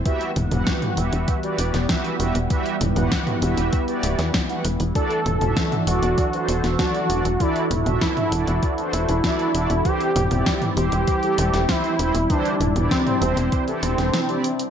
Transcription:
0.05 E3 G3 B3 F#4 G4 B4 E5 F#5, kick, closed hi-hat
0.21 closed hi-hat
0.36 E1, closed hi-hat, mid tom
0.51 E1 E3 F#4 G4 B4 F#5, closed hi-hat, mid tom
0.67 kick, snare, closed hi-hat
0.82 closed hi-hat, mid tom
0.97 E1 E3 F#4 G4 B4 E5, closed hi-hat
1.13 E1, closed hi-hat
1.28 kick, closed hi-hat
1.43 E3 F#4 G4 B4 D5, closed hi-hat
1.59 E1, closed hi-hat
1.74 E1, snare, closed hi-hat
1.89 E3 F#4 G4 B4 E5, kick, snare, closed hi-hat
2.05 closed hi-hat
2.20 E1 E3 F#4 G4 B4 E5, closed hi-hat
2.35 E1, closed hi-hat
2.50 E3 E4 F#4 G4 B4 E5, kick, closed hi-hat
2.66 closed hi-hat
2.81 E1, closed hi-hat, mid tom
2.96 E1 E3 F#4 G4 B4 F#5, closed hi-hat, mid tom
3.12 kick, snare, closed hi-hat
3.27 closed hi-hat, mid tom
3.42 E1 E3 F#4 G4 B4 E5, closed hi-hat
3.57 E1, closed hi-hat
3.73 kick, closed hi-hat
3.88 E3 F#4 G4 B4 D5, closed hi-hat
4.03 D1, closed hi-hat
4.19 E2, snare, closed hi-hat
4.34 kick, snare, closed hi-hat
4.49 E3 F#4 G4 B4 F#5, closed hi-hat
4.65 E1, closed hi-hat
4.80 E1, closed hi-hat
4.95 E3 D4 F#4 A4 D5, kick, closed hi-hat
5.11 closed hi-hat
5.26 E1, closed hi-hat, mid tom
5.41 E1 E3 D4 F#4 A4 E5, closed hi-hat, mid tom
5.57 kick, snare, closed hi-hat
5.72 closed hi-hat, mid tom
5.87 E1 E3 D4 F#4 A4 D5, closed hi-hat
6.03 E1, closed hi-hat
6.18 kick, closed hi-hat
6.33 E3 D4 F#4 A4 C5, closed hi-hat
6.49 E1, closed hi-hat
6.64 E1, snare, closed hi-hat
6.79 E3 D4 F#4 A4 D5, kick, snare, closed hi-hat
6.95 closed hi-hat
7.10 E1 E3 D4 F#4 A4 D5, closed hi-hat
7.25 E1, closed hi-hat
7.40 E3 D4 E4 F#4 A4 D5, kick, closed hi-hat
7.56 closed hi-hat
7.71 E1, closed hi-hat, mid tom
7.86 E1 E3 D4 F#4 A4 E5, closed hi-hat, mid tom
8.01 E4, kick, snare, closed hi-hat
8.17 closed hi-hat, mid tom
8.32 E1 E3 D4 F#4 D5, closed hi-hat
8.47 E1, closed hi-hat
8.63 kick, closed hi-hat
8.78 E3 D4 F#4 A4 C5, closed hi-hat
8.93 E1 E4, closed hi-hat
9.09 E1, closed hi-hat
9.24 E3 D4 F#4 A4 D5, kick, snare, closed hi-hat
9.39 closed hi-hat
9.54 E1 D4 F#4 A4 D5, closed hi-hat
9.70 E1, closed hi-hat
9.85 E3 G3 C4 E4 G4 C5, kick, closed hi-hat
10.01 closed hi-hat
10.16 E1, closed hi-hat, mid tom
10.31 E1 E3 C4 E4 G4 D5, closed hi-hat, mid tom
10.46 kick, snare, closed hi-hat
10.62 closed hi-hat, mid tom
10.77 E1 E3 C4 E4 G4 C5, closed hi-hat
10.92 E1, closed hi-hat
11.07 kick, closed hi-hat
11.23 E3 C4 E4 G4 A4, closed hi-hat
11.38 E1, closed hi-hat
11.54 E1, snare, closed hi-hat
11.69 E3 C4 E4 G4 C5, kick, snare, closed hi-hat
11.84 closed hi-hat
11.99 E1 E3 C4 E4 G4 C5, closed hi-hat
12.15 E1, closed hi-hat
12.30 E3 C4 D4 E4 G4 C5, kick, closed hi-hat
12.45 closed hi-hat
12.60 E1, closed hi-hat, mid tom
12.76 E1 E3 C4 E4 G4 D5, closed hi-hat, mid tom
12.91 C4, kick, snare, closed hi-hat
13.07 closed hi-hat, mid tom
13.22 E1 E3 C4 E4 G4 C5, closed hi-hat
13.37 E1, closed hi-hat
13.52 kick, closed hi-hat
13.68 E3 C4 E4 G4 A4, closed hi-hat
13.83 E1 C4, closed hi-hat
13.98 E1, snare, closed hi-hat
14.14 snare, closed hi-hat
14.29 E3 C4 E4 G4 D5, closed hi-hat
14.44 closed hi-hat
14.59 closed hi-hat

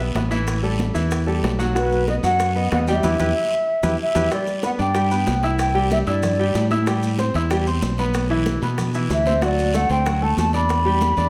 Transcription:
Already playing: B1
0.00 B3 B4 E5, high bongo
0.15 A1 B3 B4 E5, high bongo, low bongo, high conga, short guiro, maracas
0.31 E3 E4 E5, high conga, short guiro, maracas
0.47 high bongo, high conga, long guiro, maracas
0.63 G3 G4 A4, high bongo, high conga, maracas
0.79 high bongo, high conga, short guiro, maracas
0.94 E2 E3 E4 E5, high conga, short guiro, maracas
1.11 high bongo, high conga, long guiro, maracas
1.26 G3 G4 A4, high bongo, high conga, maracas
1.43 B1, high bongo, low bongo, high conga, short guiro, maracas
1.59 F#3 F#4 F#5, high bongo, high conga, short guiro, maracas
1.75 F#3 F#4 B4 F#5, high bongo, high conga, long guiro, maracas
1.92 high bongo, high conga, maracas
2.08 B3 B4 D#5, high bongo, high conga, short guiro, maracas
2.23 F#2 F#3 F#4 F#5, high bongo, high conga, short guiro, maracas
2.40 high bongo, high conga, long guiro, maracas
2.55 B3 B4 D#5, high bongo, high conga, maracas
2.72 E2 B3 B4 D#5 F#5, high bongo, low bongo, high conga, short guiro, maracas
2.87 G3 G4 E5 G5, high conga, short guiro, maracas
3.03 E2 E4 G4 B4, low bongo, low conga, long guiro, maracas
3.19 E2 E4 G4 B4, low bongo, low conga, long guiro, maracas
3.83 E2 E4 G4 B4, low bongo, low conga, long guiro, maracas
4.02 E5
4.15 E2 E4 G4 B4, low bongo, low conga, long guiro, maracas
4.31 G3 G4 D5 G5, high bongo, high conga, long guiro, maracas
4.47 high bongo, high conga, maracas
4.62 B3 B4 F#5 B5, high bongo, high conga, short guiro, maracas
4.78 G2 D4 D5 G5 D6, high bongo, high conga, short guiro, maracas
4.95 G3 G4 G5, high bongo, high conga, long guiro, maracas
5.11 B3 B4 B5, high conga, maracas
5.27 C2, high bongo, low bongo, high conga, short guiro, maracas
5.43 E4 E5 E6, high bongo, short guiro, maracas
5.59 G5, high bongo, high conga, long guiro, maracas
5.75 G3 G4 G5, high bongo, high conga
5.91 E5, high bongo, high conga, short guiro, maracas
6.06 G2 E4 D5 E5 E6, high bongo, high conga, short guiro, maracas
6.23 high bongo, high conga, low conga, long guiro, maracas
6.39 G3 G4 G5, high conga
6.54 A2, high bongo, low bongo, short guiro, maracas
6.70 E4 E5 E6, high bongo, high conga, short guiro, maracas
6.86 G3 G4 G5, high bongo, high conga, long guiro, maracas
7.03 high bongo, high conga, maracas
7.18 C4 C5 C6, high bongo, high conga, short guiro, maracas
7.34 E2 E4 E5 E6, high bongo, high conga, short guiro, maracas
7.50 G3 G4 G5, high bongo, high conga, long guiro, maracas
7.66 C4 C5 C6, high conga, maracas
7.82 B1, high bongo, low bongo, high conga, short guiro, maracas
7.98 B3 B4 B5, high bongo, high conga, short guiro, maracas
8.14 high bongo, high conga, long guiro, maracas
8.30 E3 E4 E5, high bongo
8.46 high bongo, high conga, short guiro, maracas
8.62 B2 B3 B4 B5, high bongo, high conga, short guiro, maracas
8.78 high bongo, high conga, low conga, long guiro, maracas
8.94 E3 E4 E5, high conga, maracas
9.10 D2 E5, high bongo, low bongo, short guiro, maracas
9.26 C4 C5 C6, high bongo, high conga, short guiro, maracas
9.41 F#3 F#4 D5 F#5, high bongo, high conga, long guiro, maracas
9.58 high bongo, high conga, maracas
9.73 A3 A4 F#5 A5, high bongo, high conga, short guiro, maracas
9.89 D2 C4 C5 G5 C6, high bongo, high conga, short guiro, maracas
10.05 F#3 F#4 F#5, high bongo, high conga, long guiro, maracas
10.21 A3 A4 A5, high conga
10.37 E2 A5, high bongo, low bongo, high conga, short guiro, maracas
10.53 D4 D5 B5 D6, high bongo, high conga, short guiro, maracas
10.69 high bongo, high conga, long guiro, maracas
10.85 G3 G4 G5, high bongo, high conga
11.01 high bongo, high conga, short guiro, maracas
11.17 E2 D4 D5 D6, high bongo, high conga, short guiro, maracas

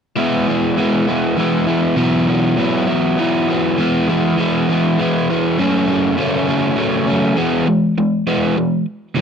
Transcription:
0.16 E3 G#3 B3 E4
0.47 G#3 B3 E4
0.77 E3 G#3 B3 E4
1.07 G#3 B3 E4
1.36 E3 G#3 B3 E4
1.67 G#3 B3 E4
1.96 B2 E3 F#3 B3 E4
2.27 F#3 B3 E4
2.58 E3 F#3 B3 E4
2.87 F#3 B3 E4
3.18 E3 F#3 B3 E4
3.48 F#3 B3 E4
3.78 E3 G#3 B3 E4
4.08 G#3 B3 E4
4.38 E3 G#3 B3 E4
4.69 G#3 B3 E4
4.99 E3 G#3 B3 E4
5.30 G#3 B3 E4
5.58 F#2 C#3 F#3 A3 C#4
5.88 F#3 A3 C#4
6.17 C#3 F#3 A3 C#4
6.47 F#3 A3 C#4
6.76 C#3 F#3 A3 C#4
7.07 F#3 A3 C#4
7.37 E3 G#3 B3
7.67 E3 G#3
7.98 E3 G#3
8.27 E3 G#3 B3
8.57 E3 G#3
9.16 B2 E3

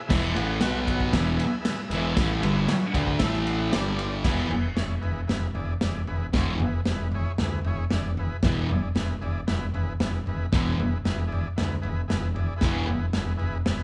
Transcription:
0.07 E1 E2 B2 E3 G#4 B4 E5, kick, snare, crash
0.34 A1 A2 E3 A3 G#4 B4 F#5, ride
0.61 B1 B2 F#3 B3 F#4 B4 F#5, snare, ride
0.85 F#4 B4 F#5, kick, ride
1.00 kick
1.11 E1 E2 B2 G#4 B4 E5, kick, snare, ride
1.15 E3
1.35 G#4 B4 E5
1.40 ride
1.61 G#4 B4 E5
1.65 snare, ride
1.88 E1 G#4 B4 E5, ride
1.92 E2 B2 E3
2.13 G#4 B4 E5, kick, snare, ride
2.17 A1 A2 E3 A3
2.39 G1 G2 D3 G#4 B4 E5, ride
2.43 G3
2.64 G#4 B4 C#5
2.68 muted picked electric bass stroke, muted distorted electric guitar stroke, snare, ride
2.92 D2 D3 A3 D4 G#4 B4 F#5, kick, ride
3.07 kick
3.18 A1 A2 E4 A4 E5, kick, snare, ride
3.23 E3 A3
3.45 E4 A4 F#5, ride
3.69 D4 G4 D5, snare, ride
3.74 G1 G2 D3 G3
3.94 D4 G4 D5
3.99 ride
4.24 E1 E2 B2 E3 E4 G#4 B4, kick, snare, floor tom, crash
4.49 E1 E4 G#4 B4, floor tom
4.75 E1 E4 G#4 C#5, snare, floor tom
5.01 E1 E4 G#4 B4, floor tom
5.27 E1 E4 G#4 B4, snare, floor tom
5.54 E1 E4 G#4 D5, floor tom
5.81 E1 E4 G#4 D5, snare, floor tom
6.07 E1 E4 G#4 B4, floor tom
6.33 E1 E2 B2 E3 E4 G#4 C#5, kick, snare, floor tom
6.60 E1 E4, floor tom
6.64 G#4 B4
6.85 E1, snare, floor tom
6.90 E4 G#4 B4
7.12 E4 G#4 C#5, floor tom
7.38 D2 G#4, snare, floor tom
7.42 E4 B4
7.64 E1 E4 G#4 C#5, floor tom
7.90 E1 E4 G#4, snare, floor tom
7.95 D5
8.17 E4 G#4 B4, floor tom
8.43 E1 E2 B2 E3 E4 G#4 B4, kick, snare, floor tom
8.69 E1 E4 G#4 D5, floor tom
8.95 E1 E4 G#4 B4, snare, floor tom
9.21 E1 E4 G#4 D5, floor tom
9.47 E1 E4 G#4 B4, snare, floor tom
9.74 E1 E4 G#4 B4, floor tom
10.00 E1 E4 G#4 B4, snare, floor tom
10.26 E1 E4 G#4 B4, floor tom
10.52 E1 E2 B2 E3 E4 G#4 B4, kick, snare, floor tom
10.79 E1 E4 G#4 B4, floor tom
11.04 E1 E4 G#4 B4, snare, floor tom
11.27 E4 G#4 D5
11.32 floor tom
11.56 D2 E4 G#4 B4, snare, floor tom
11.81 E1 E4 G#4 B4, floor tom
12.08 E1 E4 G#4 B4, snare, floor tom
12.34 E4 G#4 D5, floor tom
12.56 E4 G#4 B4
12.61 E1 E2 B2 E3, kick, snare, floor tom
12.86 E1 E4 G#4 B4, floor tom
13.13 E1 E4 G#4 B4, snare, floor tom
13.37 E4 G#4 B4, floor tom
13.42 E1
13.65 E1 E4 G#4 B4, snare, floor tom

